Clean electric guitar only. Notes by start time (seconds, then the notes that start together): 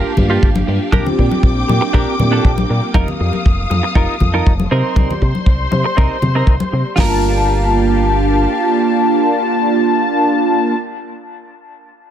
Already playing: F4 G4 A#4
0.30 F4 G4 A4
0.67 muted clean electric guitar stroke
0.92 D4 G4 A#4
1.18 muted clean electric guitar stroke
1.68 muted clean electric guitar stroke
1.81 muted clean electric guitar stroke
1.93 D4 G4 A#4
2.32 D4 G4 A4
2.70 muted clean electric guitar stroke
2.95 D#4 F4 A#4
3.20 muted clean electric guitar stroke
3.70 muted clean electric guitar stroke
3.83 muted clean electric guitar stroke
3.95 D#4 F4 A#4
4.34 D#4 F4 A#4
4.71 C4 D#4 A#4
5.21 muted clean electric guitar stroke
5.71 muted clean electric guitar stroke
5.84 muted clean electric guitar stroke
5.97 C4 D#4 A#4
6.35 C4 D#4 A#4
6.72 muted clean electric guitar stroke
6.96 F4 G4
7.00 A#4